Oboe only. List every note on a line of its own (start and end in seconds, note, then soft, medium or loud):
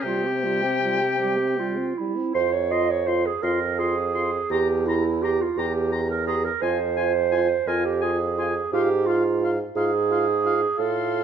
0.02 1.96 G4 medium
2.35 2.51 C6 medium
2.71 2.87 C6 medium
3.08 3.24 C6 soft
3.44 3.60 C6 soft
3.80 3.96 C6 soft
4.15 4.31 C6 medium
4.52 4.68 A#5 medium
4.89 5.05 A#5 soft
5.24 5.40 A#5 soft
5.58 5.74 A#5 soft
5.92 6.08 A#5 soft
6.28 6.43 A#5 soft
6.62 6.78 G#5 medium
6.97 7.12 G#5 soft
7.32 7.48 G#5 soft
7.68 7.84 G#5 soft
8.01 8.17 G#5 medium
8.39 8.55 G#5 soft
8.74 8.89 F5 medium
9.08 9.24 F5 medium
9.44 9.59 F5 soft
9.77 9.92 F5 soft
10.12 10.27 F5 soft
10.46 10.61 F5 medium
10.79 11.24 F5 medium